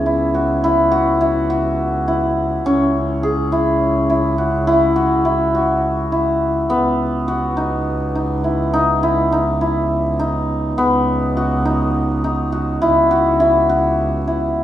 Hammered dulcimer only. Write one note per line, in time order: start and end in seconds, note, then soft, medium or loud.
0.00 2.19 B3 medium
0.00 2.48 C#4 medium
0.00 2.24 G#4 medium
0.06 0.63 E4 medium
0.34 0.91 F#4 soft
0.64 1.20 E4 medium
0.92 1.50 F#4 medium
1.21 2.07 E4 medium
1.50 4.38 F#4 medium
2.08 3.52 E4 medium
2.66 6.52 C#4 medium
3.23 6.26 G#4 medium
3.52 4.09 E4 medium
4.10 4.67 E4 medium
4.38 4.95 F#4 medium
4.67 5.25 E4 medium
4.96 5.54 F#4 medium
5.25 6.12 E4 medium
5.55 7.27 F#4 medium
6.12 7.63 E4 medium
6.70 10.77 B3 medium
7.28 10.53 F#4 medium
7.57 8.15 D#4 medium
8.15 8.50 D#4 medium
8.44 8.79 E4 soft
8.73 9.09 D#4 medium
9.03 9.38 E4 medium
9.32 9.67 D#4 medium
9.61 10.25 E4 medium
10.19 11.65 D#4 medium
10.78 14.64 B3 medium
11.37 12.52 F#4 medium
11.65 12.24 D#4 medium
12.24 12.88 D#4 medium
12.52 13.10 F#4 medium
12.82 13.40 E4 medium
13.11 13.69 F#4 medium
13.40 14.27 E4 medium
13.69 14.64 F#4 medium
14.27 14.64 E4 soft